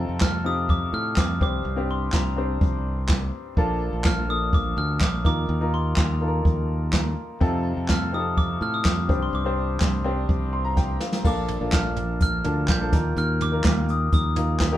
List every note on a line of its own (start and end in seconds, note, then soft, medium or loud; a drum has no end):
0.00 0.41 C3 medium
0.00 0.36 C4 medium
0.00 0.36 D#4 medium
0.00 0.37 F4 medium
0.00 0.37 A4 medium
0.09 0.89 F2 medium
0.20 0.46 F6 medium
0.20 kick medium
0.20 snare loud
0.20 clap medium
0.44 1.29 C4 medium
0.44 1.29 D#4 medium
0.44 1.30 F4 medium
0.44 1.30 G4 medium
0.44 0.70 D#6 medium
0.69 0.94 D6 medium
0.69 kick loud
0.93 1.15 A2 medium
0.93 1.18 F6 medium
1.16 1.39 F2 medium
1.16 1.40 D6 medium
1.16 kick medium
1.16 snare medium
1.16 clap medium
1.40 1.63 C2 medium
1.40 2.09 G2 soft
1.40 1.72 C4 medium
1.40 1.73 D4 soft
1.40 1.73 G4 medium
1.40 1.73 C5 medium
1.40 1.87 D6 medium
1.40 kick loud
1.65 2.10 C2 medium
1.76 2.29 C4 medium
1.76 2.30 D4 medium
1.76 2.30 G4 medium
1.76 2.30 C5 medium
1.91 2.12 C6 medium
2.12 2.58 C2 medium
2.12 2.82 A#5 medium
2.12 kick medium
2.12 snare medium
2.12 clap medium
2.37 3.21 C4 medium
2.37 3.21 D4 medium
2.37 3.22 G4 medium
2.37 3.22 C5 medium
2.61 3.30 C2 medium
2.61 kick loud
3.09 kick medium
3.09 snare medium
3.09 clap medium
3.57 3.90 A#1 medium
3.57 4.20 A#3 medium
3.57 4.20 D4 medium
3.57 4.21 F4 medium
3.57 4.21 A4 medium
3.57 kick medium
3.93 4.73 A#1 medium
4.04 4.28 F6 medium
4.04 kick loud
4.04 snare loud
4.04 clap medium
4.29 5.13 A#3 medium
4.29 5.13 D4 soft
4.29 5.14 F4 medium
4.29 5.14 A4 medium
4.29 4.52 D#6 medium
4.53 4.79 D6 medium
4.53 kick loud
4.77 4.99 D2 medium
4.77 4.89 F6 medium
5.00 5.23 A#1 medium
5.00 5.25 D6 medium
5.00 kick medium
5.00 snare medium
5.00 clap medium
5.24 5.47 D#2 medium
5.24 5.93 A#2 soft
5.24 5.56 A#3 medium
5.24 5.56 D#4 medium
5.24 5.57 F4 medium
5.24 5.57 A#4 medium
5.24 5.75 D6 medium
5.24 kick loud
5.24 snare soft
5.49 5.94 D#2 medium
5.61 6.14 A#3 medium
5.61 6.14 D#4 medium
5.61 6.14 F4 medium
5.61 6.14 A#4 medium
5.74 5.85 C6 medium
5.96 6.42 D#2 medium
5.96 6.66 A#5 medium
5.96 kick medium
5.96 snare medium
5.96 clap medium
6.20 7.05 A#3 medium
6.20 7.05 D#4 medium
6.20 7.06 F4 soft
6.20 6.27 A4 medium
6.28 7.09 A#4 medium
6.45 7.13 D#2 medium
6.45 kick loud
6.93 kick medium
6.93 snare medium
6.93 clap medium
7.41 7.75 F2 medium
7.41 8.09 C3 medium
7.41 8.04 C4 medium
7.41 8.04 D#4 medium
7.41 8.05 F4 medium
7.41 8.05 A4 medium
7.41 kick loud
7.77 8.57 F2 medium
7.89 8.14 F6 medium
7.89 kick medium
7.89 snare loud
7.89 clap medium
8.12 8.97 C4 medium
8.12 8.97 D#4 medium
8.12 8.97 F4 medium
8.12 8.19 G4 soft
8.12 8.36 D#6 medium
8.19 9.01 A4 medium
8.37 8.48 D6 medium
8.37 kick loud
8.61 8.83 A2 medium
8.61 8.74 F6 medium
8.74 8.85 D#6 medium
8.85 9.07 F2 medium
8.85 9.23 D6 medium
8.85 kick medium
8.85 snare medium
8.85 clap medium
9.08 9.31 C2 medium
9.08 9.77 G2 medium
9.08 9.40 C4 medium
9.08 9.40 D4 medium
9.08 9.41 G4 medium
9.08 9.41 C5 medium
9.08 kick loud
9.23 9.33 C6 medium
9.33 9.78 C2 medium
9.33 10.74 D6 medium
9.45 9.98 C4 medium
9.45 9.98 D4 medium
9.45 9.98 G4 medium
9.45 9.98 C5 medium
9.80 10.26 C2 medium
9.80 kick medium
9.80 snare loud
9.80 clap medium
10.04 10.89 C4 medium
10.04 10.89 D4 medium
10.04 10.89 G4 medium
10.04 10.90 C5 medium
10.29 10.97 C2 medium
10.29 kick medium
10.53 10.64 C6 medium
10.65 10.76 A#5 medium
10.77 10.99 G5 medium
10.77 kick medium
10.77 snare soft
11.01 11.23 F5 soft
11.01 snare medium
11.13 snare medium
11.24 11.58 A#1 medium
11.24 11.93 A#2 medium
11.24 11.93 F3 medium
11.24 11.56 A#3 medium
11.24 11.56 D4 medium
11.24 11.57 F4 medium
11.24 11.57 A4 medium
11.24 11.75 D6 medium
11.24 kick loud
11.24 crash medium
11.48 closed hi-hat medium
11.48 floor tom soft
11.60 12.41 A#1 medium
11.60 12.34 A#3 medium
11.60 12.35 D4 medium
11.60 12.35 F4 medium
11.60 12.35 A4 medium
11.72 12.21 F6 medium
11.72 kick medium
11.72 snare loud
11.72 clap medium
11.72 closed hi-hat medium
11.96 closed hi-hat soft
11.96 floor tom soft
12.20 12.71 F6 medium
12.20 kick loud
12.20 closed hi-hat loud
12.44 12.67 D2 medium
12.44 12.76 A#3 medium
12.44 12.76 D4 medium
12.44 12.77 F4 medium
12.44 12.77 A4 medium
12.44 closed hi-hat medium
12.44 floor tom medium
12.68 12.91 A#1 medium
12.68 13.19 G6 medium
12.68 kick medium
12.68 snare medium
12.68 clap medium
12.68 closed hi-hat medium
12.80 12.90 A#3 medium
12.80 12.93 D4 medium
12.80 12.91 F4 medium
12.80 12.93 A4 medium
12.92 13.15 D#2 medium
12.92 13.61 A#2 medium
12.92 13.45 A#3 medium
12.92 13.45 D#4 medium
12.92 13.46 F4 medium
12.92 13.46 A#4 medium
12.92 kick loud
12.92 snare soft
12.92 closed hi-hat medium
12.92 floor tom medium
13.16 13.61 D#2 medium
13.16 13.42 F6 medium
13.16 closed hi-hat medium
13.41 13.86 D6 medium
13.41 closed hi-hat medium
13.41 floor tom medium
13.52 14.26 A#3 medium
13.52 14.26 D#4 medium
13.52 14.26 F4 medium
13.52 14.27 A#4 medium
13.64 14.09 D#2 medium
13.64 kick medium
13.64 snare loud
13.64 clap medium
13.64 closed hi-hat medium
13.88 14.01 D#6 medium
13.88 closed hi-hat medium
14.12 14.77 D#2 medium
14.12 14.77 D#6 medium
14.12 kick loud
14.12 closed hi-hat medium
14.36 14.68 A#3 medium
14.36 14.68 D#4 medium
14.36 14.68 F4 medium
14.36 14.69 A#4 medium
14.36 closed hi-hat medium
14.36 floor tom medium
14.60 kick medium
14.60 snare loud
14.60 clap medium
14.60 closed hi-hat medium
14.72 14.77 A#3 medium
14.72 14.77 D#4 medium
14.72 14.77 F4 medium
14.72 14.77 G4 medium